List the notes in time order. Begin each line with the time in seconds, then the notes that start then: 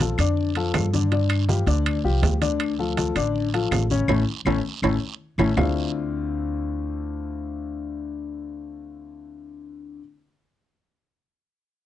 Already playing: A#1
0.00 F3 F4 A4, high conga, high timbale, low timbale, short guiro
0.18 F2 D3 D4 D5, high conga, high timbale, short guiro, claves
0.37 high conga, long guiro
0.55 F3 F4 A4, high conga, high timbale
0.74 G2, high conga, high timbale, low timbale, short guiro, claves
0.93 D3 D4 D5, high conga, short guiro
1.12 D3 D4 D5, high conga, high timbale, long guiro
1.30 high conga, high timbale, claves
1.48 F3 F4 G4, high conga, low timbale, short guiro
1.66 D2 D3 D4 D5, high timbale, short guiro
1.86 high conga, high timbale, long guiro, claves
2.04 C2 F3 F4 G4, high conga
2.22 D2, high conga, high timbale, low timbale, short guiro
2.42 D3 D4 D5, high conga, high timbale, short guiro
2.60 high conga, high timbale, long guiro, claves
2.79 F3 F4 A4, high conga
2.97 F3 F4 A4, high conga, high timbale, low timbale, short guiro
3.15 A1 D3 D4 D5, high conga, high timbale, short guiro, claves
3.35 high conga, long guiro
3.54 F3 F4 A4, high conga, high timbale
3.71 A1, high conga, high timbale, low timbale, short guiro, claves
3.90 C#3 C#4 C#5, high conga, short guiro
4.08 A1 A3 C#4 E4, high conga, high timbale, long guiro, claves
4.45 A1 A3 C#4 E4, high conga, high timbale, claves
4.82 A1 A3 C#4 E4, high conga, high timbale, long guiro, claves
5.38 A1 A3 C#4 E4, high conga, high timbale, long guiro, claves
5.57 D2 D3 A3 C4 D4 E4 F4, low conga, low timbale, long guiro, claves